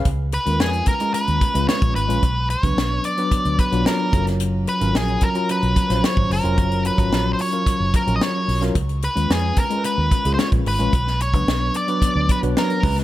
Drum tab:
HH |x-xx-xxxxxxx-xxx|x-xx--xxxxxx--xx|x-xx-xxxxxxx--ox|xxxx--oxx-xx--ox|
SD |----o-------o---|----o-------o--o|----o------oo---|----o-------o--o|
BD |o-----o---o--o--|o--o----o-o---o-|------o---o--o--|o--o----o-o-----|

HH |xxxx--xxx-xx-xox|x-xx--xxx-xx-xox|
SD |----o-------o---|-o--o-------o--o|
BD |o-----o---o--o--|o--o----o-o---o-|